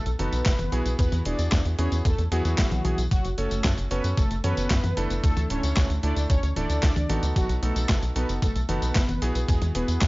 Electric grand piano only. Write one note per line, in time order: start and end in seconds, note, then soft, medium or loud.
0.19 0.49 B3 medium
0.19 0.49 D#4 medium
0.19 0.49 F#4 medium
0.19 0.49 A4 loud
0.72 1.22 B3 medium
0.72 1.22 E4 medium
0.72 1.22 F#4 medium
0.72 1.22 G#4 loud
1.25 1.75 B3 medium
1.25 1.75 E4 medium
1.25 1.75 F#4 medium
1.25 1.75 G#4 medium
1.79 2.08 B3 medium
1.79 2.08 E4 medium
1.79 2.08 F#4 medium
1.79 2.08 G#4 medium
2.32 2.42 B3 loud
2.32 2.42 E4 medium
2.32 2.42 F#4 medium
2.32 2.42 G#4 loud
2.45 2.82 B3 medium
2.45 2.82 E4 medium
2.45 2.82 F#4 medium
2.45 2.82 G#4 medium
2.85 3.03 B3 medium
2.85 3.03 E4 medium
2.85 3.03 F#4 medium
2.85 3.03 G#4 medium
3.38 3.88 C#4 medium
3.38 3.88 F#4 medium
3.38 3.88 A4 medium
3.38 3.88 C#5 medium
3.91 4.21 C#4 medium
3.91 4.21 F#4 medium
3.91 4.21 A4 medium
3.91 4.21 C#5 loud
4.44 4.74 C#4 medium
4.44 4.74 F#4 medium
4.44 4.74 A4 medium
4.44 4.74 C#5 loud
4.97 5.47 A3 loud
4.97 5.47 D4 medium
4.97 5.47 E4 medium
4.97 5.47 A4 loud
5.50 6.00 D3 medium
5.50 6.00 A3 medium
5.50 6.00 E4 medium
5.50 6.00 A4 medium
6.03 6.33 A3 medium
6.03 6.33 D4 medium
6.03 6.33 E4 medium
6.03 6.33 A4 loud
6.56 6.86 A3 medium
6.56 6.86 D4 medium
6.56 6.86 E4 medium
6.56 6.86 A4 loud
7.09 7.59 B3 medium
7.09 7.59 D#4 medium
7.09 7.59 F#4 medium
7.09 7.59 A4 loud
7.63 8.13 B3 medium
7.63 8.13 D#4 medium
7.63 8.13 F#4 medium
7.63 8.13 A4 medium
8.16 8.45 B3 medium
8.16 8.45 D#4 medium
8.16 8.45 F#4 medium
8.16 8.45 A4 loud
8.69 8.98 B3 medium
8.69 8.98 D#4 medium
8.69 8.98 F#4 medium
8.69 8.98 A4 loud
9.22 9.72 B3 loud
9.22 9.72 E4 medium
9.22 9.72 F#4 medium
9.22 9.72 G#4 loud
9.75 10.07 B3 medium
9.75 10.07 E4 medium
9.75 10.07 F#4 medium
9.75 10.07 G#4 medium